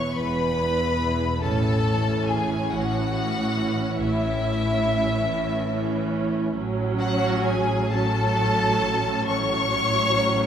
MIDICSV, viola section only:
0, 0, Header, 1, 2, 480
1, 0, Start_track
1, 0, Tempo, 853485
1, 801, Time_signature, 12, 3, 24, 8
1, 3679, Tempo, 907716
1, 5119, Tempo, 941915
1, 5731, End_track
2, 0, Start_track
2, 0, Title_t, "Viola section"
2, 0, Program_c, 0, 48
2, 0, Note_on_c, 0, 52, 59
2, 0, Note_on_c, 0, 59, 62
2, 303, Note_off_c, 0, 59, 0
2, 305, Note_off_c, 0, 52, 0
2, 314, Note_on_c, 0, 52, 71
2, 315, Note_on_c, 0, 59, 63
2, 789, Note_off_c, 0, 52, 0
2, 790, Note_off_c, 0, 59, 0
2, 795, Note_on_c, 0, 52, 67
2, 798, Note_on_c, 0, 61, 67
2, 1036, Note_off_c, 0, 52, 0
2, 1036, Note_off_c, 0, 61, 0
2, 1043, Note_on_c, 0, 61, 70
2, 1044, Note_on_c, 0, 52, 70
2, 1748, Note_off_c, 0, 61, 0
2, 1749, Note_off_c, 0, 52, 0
2, 1760, Note_on_c, 0, 52, 70
2, 1762, Note_on_c, 0, 61, 72
2, 2463, Note_off_c, 0, 52, 0
2, 2464, Note_off_c, 0, 61, 0
2, 2479, Note_on_c, 0, 52, 72
2, 2479, Note_on_c, 0, 61, 73
2, 3183, Note_off_c, 0, 52, 0
2, 3183, Note_off_c, 0, 61, 0
2, 3202, Note_on_c, 0, 52, 84
2, 3203, Note_on_c, 0, 61, 84
2, 3671, Note_off_c, 0, 52, 0
2, 3671, Note_off_c, 0, 61, 0
2, 3683, Note_on_c, 0, 54, 97
2, 3685, Note_on_c, 0, 61, 97
2, 4380, Note_off_c, 0, 54, 0
2, 4381, Note_off_c, 0, 61, 0
2, 4406, Note_on_c, 0, 54, 85
2, 4409, Note_on_c, 0, 61, 78
2, 5107, Note_off_c, 0, 54, 0
2, 5109, Note_off_c, 0, 61, 0
2, 5120, Note_on_c, 0, 61, 81
2, 5123, Note_on_c, 0, 54, 88
2, 5731, Note_off_c, 0, 54, 0
2, 5731, Note_off_c, 0, 61, 0
2, 5731, End_track
0, 0, End_of_file